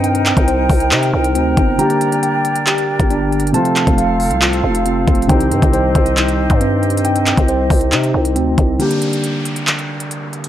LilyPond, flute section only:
\new Staff \with { instrumentName = "Flute section" } { \time 4/4 \key c \dorian \tempo 4 = 137 << { <bes' g''>1~ | <bes' g''>1 | <a' f''>1 | <g' ees''>1~ |
<g' ees''>1 | r1 | } \\ { ees'1 | d'1 | c'1~ | c'1~ |
c'1 | r1 | } >> }